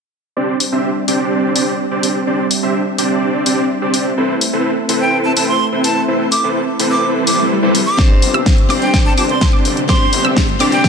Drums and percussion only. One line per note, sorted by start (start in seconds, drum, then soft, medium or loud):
0.60 open hi-hat loud
1.08 open hi-hat medium
1.56 open hi-hat medium
2.03 open hi-hat loud
2.51 open hi-hat loud
2.98 open hi-hat loud
3.46 open hi-hat medium
3.94 open hi-hat loud
4.41 open hi-hat loud
4.89 open hi-hat loud
5.37 open hi-hat loud
5.84 open hi-hat loud
6.32 open hi-hat loud
6.80 open hi-hat loud
7.27 open hi-hat loud
7.75 open hi-hat loud
7.99 kick loud
7.99 snare soft
7.99 closed hi-hat medium
8.22 open hi-hat loud
8.34 closed hi-hat medium
8.46 kick loud
8.46 snare soft
8.46 closed hi-hat medium
8.58 closed hi-hat soft
8.70 open hi-hat loud
8.82 closed hi-hat medium
8.94 kick loud
8.94 snare medium
8.94 closed hi-hat medium
9.18 open hi-hat loud
9.29 closed hi-hat medium
9.41 kick loud
9.41 snare medium
9.41 closed hi-hat medium
9.65 open hi-hat loud
9.77 closed hi-hat medium
9.89 kick loud
9.89 snare medium
9.89 closed hi-hat medium
10.13 open hi-hat loud
10.25 closed hi-hat medium
10.37 kick loud
10.37 snare medium
10.37 closed hi-hat medium
10.48 closed hi-hat soft
10.60 open hi-hat loud
10.72 closed hi-hat medium
10.84 kick loud
10.84 snare medium
10.84 closed hi-hat medium